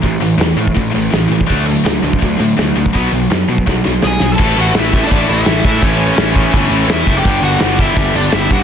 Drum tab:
CC |----------------|----------------|----------------|x---------------|
HH |o-o-o-o-o-o-o-o-|o-o-o-o-o-o-o-o-|o-o-o-o---------|----o---o---o---|
SD |----o-------o---|----o-------o---|----o---o-o-o-o-|----o-------o---|
BD |o------oo------o|o------oo------o|o------oo-------|o-----o-o-----o-|

CC |----------------|----------------|
HH |o---o---o---o---|o---o---o---o---|
SD |----o-------o---|----o-------o---|
BD |o-----o-o-----o-|o-----o-o-----o-|